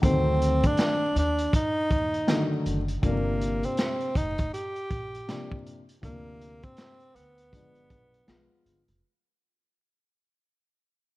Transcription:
0.02 0.63 D2 medium
0.02 1.02 D#3 medium
0.02 1.03 F#3 medium
0.02 1.03 A3 medium
0.02 1.03 C4 medium
0.02 0.68 C4 medium
0.02 kick medium
0.02 closed hi-hat medium
0.42 closed hi-hat medium
0.63 1.17 D4 medium
0.63 kick medium
0.63 closed hi-hat soft
0.77 snare loud
0.77 closed hi-hat medium
1.16 1.45 D#2 medium
1.16 1.52 D4 medium
1.16 closed hi-hat medium
1.38 closed hi-hat medium
1.53 2.63 D#4 medium
1.53 kick medium
1.53 closed hi-hat medium
1.90 2.20 D#2 medium
1.90 kick medium
1.90 closed hi-hat medium
2.14 closed hi-hat soft
2.27 2.79 D3 medium
2.27 2.78 D#3 medium
2.27 2.78 F#3 medium
2.27 2.79 A3 medium
2.27 snare loud
2.27 closed hi-hat medium
2.66 2.96 F#1 medium
2.66 closed hi-hat medium
2.88 closed hi-hat soft
3.02 3.62 G1 loud
3.02 4.02 C3 medium
3.02 4.03 F3 medium
3.02 3.11 A3 medium
3.02 3.67 A#3 medium
3.02 4.03 D4 medium
3.02 kick medium
3.02 closed hi-hat medium
3.10 4.06 A#3 medium
3.41 closed hi-hat medium
3.63 4.18 C4 medium
3.63 closed hi-hat soft
3.77 snare loud
3.77 closed hi-hat medium
4.00 closed hi-hat soft
4.15 4.45 F1 medium
4.15 4.53 D#4 medium
4.15 kick medium
4.15 closed hi-hat medium
4.38 kick medium
4.38 closed hi-hat soft
4.54 5.62 G4 medium
4.54 closed hi-hat medium
4.76 closed hi-hat soft
4.91 5.20 A#1 medium
4.91 kick medium
4.91 closed hi-hat medium
5.15 closed hi-hat soft
5.27 5.78 C3 medium
5.27 5.78 F3 medium
5.27 5.79 A#3 medium
5.27 5.79 D4 medium
5.27 snare medium
5.27 closed hi-hat medium
5.51 kick medium
5.66 closed hi-hat medium
5.89 closed hi-hat medium
6.02 6.63 D2 loud
6.02 7.02 C3 medium
6.02 7.02 F3 medium
6.02 7.03 A#3 medium
6.02 6.66 A#3 medium
6.02 7.03 D4 medium
6.02 kick medium
6.02 closed hi-hat medium
6.42 closed hi-hat medium
6.63 7.17 C4 medium
6.63 kick medium
6.63 closed hi-hat soft
6.77 snare loud
6.77 closed hi-hat medium
7.00 closed hi-hat soft
7.15 7.54 D2 medium
7.15 8.65 B3 medium
7.15 closed hi-hat medium
7.38 closed hi-hat soft
7.52 7.92 G1 medium
7.52 8.16 F3 medium
7.52 8.16 G#3 medium
7.52 8.16 B3 medium
7.52 8.17 D4 medium
7.52 kick medium
7.52 closed hi-hat medium
7.75 closed hi-hat soft
7.90 8.20 B1 medium
7.90 kick medium
7.90 closed hi-hat soft
8.14 closed hi-hat soft
8.27 8.46 B1 medium
8.27 8.78 F3 medium
8.27 8.78 G#3 medium
8.27 8.78 B3 medium
8.27 8.79 F4 medium
8.27 snare medium
8.27 closed hi-hat medium
8.66 8.84 G1 medium
8.66 closed hi-hat medium
8.88 9.00 F1 medium
8.88 closed hi-hat soft

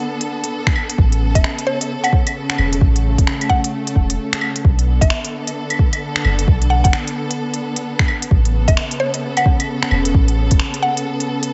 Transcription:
0.00 0.95 D3 medium
0.00 2.77 B3 medium
0.00 4.61 A4 medium
0.21 closed hi-hat soft
0.44 closed hi-hat medium
0.67 finger snap loud
0.67 kick loud
0.76 claves medium
0.90 closed hi-hat medium
0.98 1.33 A1 loud
0.98 4.61 C#3 medium
0.98 kick loud
1.12 closed hi-hat soft
1.35 1.98 E5 medium
1.35 kick loud
1.35 closed hi-hat medium
1.44 finger snap loud
1.59 closed hi-hat soft
1.67 1.91 C#5 medium
1.81 closed hi-hat medium
2.04 2.28 F#5 medium
2.04 closed hi-hat soft
2.04 claves soft
2.13 kick loud
2.27 closed hi-hat medium
2.27 claves soft
2.50 finger snap loud
2.58 2.80 E1 medium
2.58 claves medium
2.73 closed hi-hat medium
2.81 3.17 A1 loud
2.81 4.63 A3 medium
2.81 kick loud
2.96 closed hi-hat soft
3.18 kick loud
3.18 closed hi-hat medium
3.27 finger snap loud
3.41 closed hi-hat soft
3.41 claves soft
3.49 3.96 F#5 loud
3.49 kick medium
3.64 closed hi-hat medium
3.87 closed hi-hat soft
3.96 4.18 E1 loud
3.96 kick medium
4.10 closed hi-hat medium
4.33 finger snap loud
4.33 closed hi-hat soft
4.41 claves medium
4.56 closed hi-hat medium
4.64 5.00 B1 loud
4.64 8.27 D3 medium
4.64 11.53 B3 medium
4.64 8.27 A4 medium
4.64 kick loud
4.79 closed hi-hat soft
5.01 5.10 F#1 medium
5.01 5.65 E5 medium
5.01 kick loud
5.01 closed hi-hat medium
5.10 finger snap loud
5.25 closed hi-hat soft
5.47 closed hi-hat medium
5.70 closed hi-hat soft
5.70 claves medium
5.79 kick loud
5.93 closed hi-hat medium
5.93 claves soft
6.16 finger snap loud
6.25 6.46 F#1 medium
6.25 claves medium
6.39 closed hi-hat medium
6.48 6.83 B1 loud
6.48 kick loud
6.62 closed hi-hat soft
6.70 6.82 F#5 medium
6.84 7.30 F#5 medium
6.84 kick loud
6.84 closed hi-hat medium
6.93 finger snap loud
7.07 closed hi-hat soft
7.31 closed hi-hat medium
7.54 closed hi-hat soft
7.76 closed hi-hat medium
7.99 finger snap loud
7.99 kick loud
8.08 claves medium
8.22 closed hi-hat medium
8.31 8.66 A1 loud
8.31 11.53 C#3 medium
8.31 11.53 A4 medium
8.31 kick loud
8.45 closed hi-hat soft
8.68 9.31 E5 loud
8.68 kick loud
8.68 closed hi-hat medium
8.77 finger snap loud
8.91 closed hi-hat soft
9.00 9.24 C#5 loud
9.14 closed hi-hat medium
9.37 9.61 F#5 medium
9.37 closed hi-hat soft
9.37 claves medium
9.46 kick loud
9.60 closed hi-hat medium
9.60 claves soft
9.83 finger snap loud
9.91 10.13 E1 medium
9.91 claves medium
10.05 closed hi-hat medium
10.14 10.50 A1 loud
10.14 kick loud
10.28 closed hi-hat soft
10.51 kick loud
10.51 closed hi-hat medium
10.60 finger snap loud
10.74 closed hi-hat soft
10.83 11.29 F#5 loud
10.97 closed hi-hat medium
11.20 closed hi-hat soft
11.43 closed hi-hat medium

